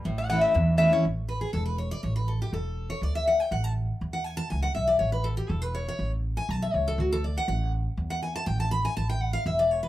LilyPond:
<<
  \new Staff \with { instrumentName = "Resonator guitar played with a steel bar" } { \time 4/4 \key a \major \tempo 4 = 242 r8 fis''8 fis''8 e''4. e''8 cis''8 | r1 | r1 | r1 |
r1 | r1 | r1 | r1 |
r1 | r1 | }
  \new Staff \with { instrumentName = "Steel-string acoustic guitar" } { \time 4/4 \key a \major << { r4 <e a cis' e'>4 r4 <e a cis' e'>8 <cis' e'>8 | r4 b'8 gis'8 a'8 b'8 cis''8 d''8 | cis''8 b'8 a'8 g'8 a'4. cis''8 | d''8 e''8 fis''8 g''8 fis''8 a''8 r4 |
r8 fis''8 gis''8 a''8 gis''8 fis''8 e''8 d''8 | cis''8 b'8 a'8 g'8 a'8 b'8 cis''8 cis''8~ | cis''8 r4 gis''8 a''8 e''8 cis''8 a'8 | fis'8 a'8 d''8 fis''8 fis''4 r4 |
r8 fis''8 gis''8 a''8 g''8 a''8 b''8 gis''8 | a''8 g''8 fis''8 f''8 e''8 d''8 cis''8 b'8 | } \\ { a,2 e,2 | r1 | r1 | r1 |
r1 | r1 | r1 | r1 |
r1 | r1 | } >> }
  \new Staff \with { instrumentName = "Upright bass" } { \clef bass \time 4/4 \key a \major a,,2 e,2 | a,,2 e,,2 | a,,2 e,,2 | d,2 a,,2 |
e,2 cis,4 b,,4 | a,,2 e,,2 | a,,2 b,,4 cis,4 | d,2 a,,2 |
e,2 a,,2 | a,,2 e,,2 | }
>>